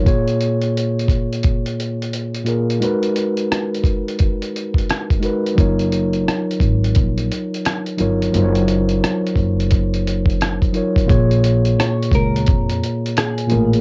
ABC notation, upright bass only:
X:1
M:4/4
L:1/16
Q:"Swing 16ths" 1/4=87
K:Bbphr
V:1 name="Upright bass" clef=bass
z16 | z16 | G,,,4 z2 A,,,2 B,,,2 z4 =G,,,2 | G,,,4 z2 G,,,6- G,,, z3 |
B,,,4 z2 D,,2 F,,2 z4 =A,,,2 |]